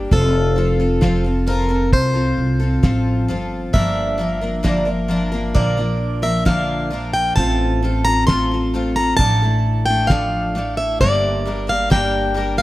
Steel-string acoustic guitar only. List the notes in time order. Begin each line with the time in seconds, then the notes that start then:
0.13 A4
1.48 A#4
1.93 C5
3.74 E5
5.55 D5
6.23 E5
6.46 F5
7.13 G5
7.36 A5
8.05 A#5
8.27 C6
8.96 A#5
9.17 A5
9.86 G5
10.07 F5
10.77 E5
11.01 D5
11.69 F5
11.92 G5
12.58 F5